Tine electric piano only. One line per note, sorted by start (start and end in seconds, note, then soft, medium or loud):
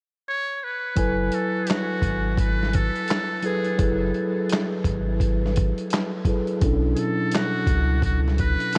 0.96 1.86 F#3 medium
0.96 1.86 E4 medium
0.96 1.87 A4 medium
0.96 1.87 B4 loud
0.96 1.87 G#5 medium
3.43 3.68 F#3 medium
3.43 3.69 E4 medium
3.43 3.69 G#4 medium
3.43 3.69 A4 medium
3.43 3.70 B4 medium
3.78 4.68 F#3 medium
3.78 4.69 E4 medium
3.78 4.69 G#4 medium
3.78 4.70 A4 medium
3.78 4.70 B4 medium
6.25 6.50 F#3 medium
6.25 6.51 E4 medium
6.25 6.51 G#4 medium
6.25 6.52 A4 medium
6.25 6.52 B4 medium
6.60 7.50 B2 medium
6.60 7.51 F#3 medium
6.60 7.51 C#4 medium
6.60 7.52 D4 medium
6.60 7.52 E4 medium
6.60 7.52 A4 medium